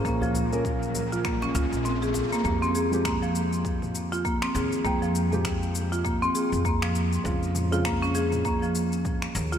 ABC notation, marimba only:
X:1
M:4/4
L:1/16
Q:"Swing 16ths" 1/4=100
K:Fm
V:1 name="Marimba"
B, F,4 z2 F B, D F z C A z B, | B, C A2 B, F,4 z2 F B, C A2 | B, F,4 z2 F B, C A2 B, F,3 | z3 F B, D A2 B, F,4 z2 F |]